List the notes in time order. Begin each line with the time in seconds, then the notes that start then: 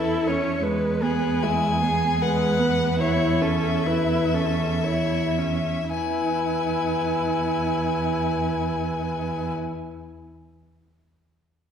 Already playing: E2 E4 A4 E5
0.27 C#4 C#5
0.63 E2 G#3 B4
1.02 B3 G#4 B4
1.42 G#3 E4 G#5
1.82 B3 G#4
2.21 G#3 B4 F#5
2.59 B3
3.00 E4 C#5 E5
3.42 C#4 A4
3.86 E4 B4
4.33 C#4 A4
4.84 E4 C#5
5.38 C#4
5.93 E2 E4 B4 G#5